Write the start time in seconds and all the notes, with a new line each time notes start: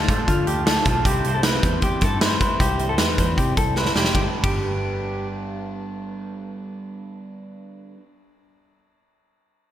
Already playing: A4
0.08 A2 F3 D4 F4 A4, kick, closed hi-hat
0.28 D3 F4, kick, closed hi-hat
0.47 D2 G4, closed hi-hat
0.66 F3 D4 F4 A4, snare, closed hi-hat
0.85 B1 F3 D4 F4 A4, kick, closed hi-hat
1.05 C2 C3 G3 C4 E4 G4 C5, kick, closed hi-hat
1.24 C2 G3 C4 E4 C5, closed hi-hat
1.35 C4 E4 A4 C5
1.43 B4, snare, closed hi-hat
1.63 E2 G3 C4 E4 C5, kick, closed hi-hat
1.82 G4, kick, closed hi-hat
2.01 G2 A4, kick, closed hi-hat
2.20 G3 C4 E4 B4 C5, snare, closed hi-hat
2.39 G3 C4 E4 B4 C5, kick, closed hi-hat
2.60 C2 C3 G3 C4 E4 G4 C5, kick, closed hi-hat
2.79 G3 C4 E4 C5, closed hi-hat
2.88 C4 E4 A4 C5
2.98 E2 B4, snare, closed hi-hat
3.18 E2 G3 C4 E4 C5, kick, closed hi-hat
3.37 C3 G4, kick, closed hi-hat
3.57 C2 A4, kick, closed hi-hat
3.76 G3 C4 E4 B4 C5, snare
3.86 snare
3.95 F1 G3 C4 E4 G4 C5, snare
4.04 snare
4.10 G2
4.15 G1 D3 G3 G4, kick, ride
4.20 B3 D4
4.26 B4
4.40 G1 G2, kick, ride
4.44 D3 G3 G4
4.50 B3 D4
4.56 B4